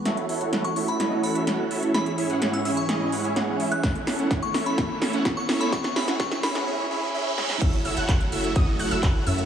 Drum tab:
CC |----------------|----------------|----------------|----------------|
HH |xxoxxxoxx-oxx-ox|xxoxxxoxx-oxx-ox|xxoxxxoxx-oxx-ox|xxoxxxox--------|
CP |----------------|----------------|----------------|----------------|
SD |o---o---o---o---|o---o---o---o---|o-o-o-o-o-o-o-o-|oooooooo------oo|
BD |----------------|----------------|o---o---o---o---|o---o-----------|

CC |x---------------|
HH |xxoxxxoxx-oxx-ox|
CP |----x-------x---|
SD |----------------|
BD |o---o---o---o---|